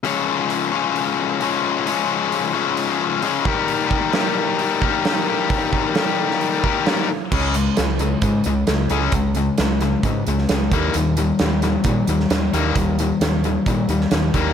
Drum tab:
CC |----------------|----------------|----------------|----------------|
HH |o---o---o---o---|o---o---o---o---|o---o---o---o---|o---o---o---o---|
SD |----------------|----------------|----o-------o---|----o--o----o---|
BD |----------------|--------------o-|--o-------o-----|o-o-------o-----|

CC |x---------------|----------------|----------------|----------------|
HH |--x-x-x-x-x-x-x-|x-x-x-x-x-x-x-x-|x-x-x-x-x-x-x-x-|x-x-x-x-x-x-x-x-|
SD |----o-------o---|----o-o----oo---|----o-o----oo---|----o------oo---|
BD |o-------o-------|o-------o-----o-|--------o-------|o-------o-----o-|